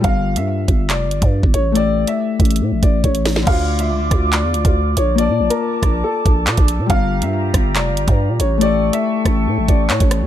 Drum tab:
CC |--------------------------------|--------------------------------|x-------------------------------|--------------------------------|
HH |x-----x-----x---x---x-x-----x---|x-----x-----xxxx----x---x-x-o---|x-----x-----x---x---x-x-----x---|x-----x-----x-------x---x-x-x---|
CP |----------------x---------------|--------------------------------|----------------x---------------|------------------------x-------|
SD |--------------------------------|----------------------------o-o-|------------r-------------------|------------r-------------------|
BD |o-----------o---------o---o-----|------------o-------o---o-------|o-----------o---------o---------|------------o-------o-----o-----|

CC |--------------------------------|--------------------------------|
HH |x-----x-----x---x---x-x-----x---|x-----x-----x-------x---x-x-x---|
CP |----------------x---------------|------------------------x-------|
SD |------------r-------------------|------------r---------------r---|
BD |o-----------o---------o---------|------------o-------o-----o-----|